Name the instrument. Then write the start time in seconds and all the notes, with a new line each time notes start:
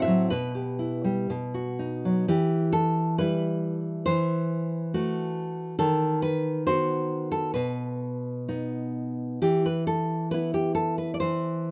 nylon-string guitar
Already playing: A2 C4 F#4
0.02 E5
0.07 F#3
0.30 B2 B4
0.55 G4
0.79 E4
1.04 G3
1.30 B2
1.54 F#4
1.79 D#4
2.05 F#3
2.28 E3 G4
2.73 A4
3.18 G3 E4 B4
4.06 E3 C5
4.94 A3 F#4
5.79 D#3 A4
6.22 B4
6.67 B3 F#4 C5
7.32 A4
7.54 B2 B4
8.48 B3 D#4
9.42 E3 G4
9.66 B4
9.87 A4
10.31 B3 E4 B4
10.54 G4
10.75 A4
10.98 B4
11.14 D5
11.20 E3 C5